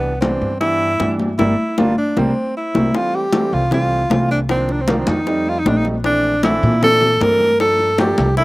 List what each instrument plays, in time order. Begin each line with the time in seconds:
Already playing: upright bass C2, grand piano E3 G3 B3 D4, tenor saxophone B3
0.03 high conga
0.21 grand piano E3 G3 B3 D4, tenor saxophone C4, high bongo, high conga
0.41 upright bass G2, high conga
0.60 grand piano E3 G3 B3 D4, tenor saxophone E4, high bongo, high conga
0.81 high conga
1.00 upright bass G2, grand piano E3 G3 B3 D4, high bongo, low bongo, high conga
1.19 high conga
1.38 upright bass G1, grand piano G3 A#3 D4, tenor saxophone E4, high bongo, high conga
1.78 upright bass G1, grand piano G3 A#3 D4, tenor saxophone F4, high bongo, high conga
1.98 tenor saxophone D4
2.17 upright bass C2, grand piano G3 A#3 C4, tenor saxophone C4, high bongo, high conga
2.57 tenor saxophone E4
2.75 upright bass C2, grand piano G3 A#3 C4, high bongo, high conga
2.94 grand piano E3 G3 A3 C4, tenor saxophone F4, high bongo, high conga
3.14 tenor saxophone G4, high conga
3.33 grand piano E3 G3 A3 C4, high bongo, high conga
3.52 upright bass C2, tenor saxophone F4, high conga
3.71 grand piano E3 G3 A3 C4, tenor saxophone F4, high bongo, high conga, low conga
3.90 high conga
4.10 upright bass C2, grand piano E3 G3 A3 C4, high bongo, low bongo, high conga
4.31 tenor saxophone D4
4.49 grand piano D#3 F3 A#3 D4, tenor saxophone C4, high bongo, high conga
4.68 tenor saxophone D4, high bongo, high conga
4.81 tenor saxophone C4
4.88 grand piano D#3 F3 A#3 D4, tenor saxophone A#3, high bongo, high conga
4.99 tenor saxophone C4
5.07 upright bass F2, tenor saxophone D#4, high bongo, high conga
5.26 grand piano G3 A3 C4 D#4, high bongo, high conga
5.46 tenor saxophone F4, high conga
5.59 tenor saxophone D#4
5.66 upright bass A#1, grand piano G3 A3 C4 D#4, tenor saxophone D4, high bongo, low bongo, high conga
5.77 tenor saxophone D#4
5.85 high bongo, high conga
6.04 grand piano E3 A3 C4 D4, tenor saxophone D4, high bongo, high conga
6.24 high conga
6.43 grand piano E3 A3 C4 D4, tenor saxophone E4, high bongo, high conga
6.63 upright bass A#2, high conga
6.82 grand piano E3 A3 C4 D4, tenor saxophone A4, high bongo, high conga, low conga
7.02 high conga, low conga
7.21 upright bass G2, grand piano E3 A3 C4 D4, tenor saxophone A#4, high bongo, low bongo, high conga
7.40 high conga
7.60 grand piano F3 A3 A#3 D4, tenor saxophone A4, high bongo, high conga
7.79 high bongo, high conga
7.98 grand piano F3 A3 A#3 D4, tenor saxophone G4, high bongo, high conga
8.18 upright bass C2, high bongo, high conga
8.37 grand piano E3 A3 A#3 D4, tenor saxophone E4, high bongo, high conga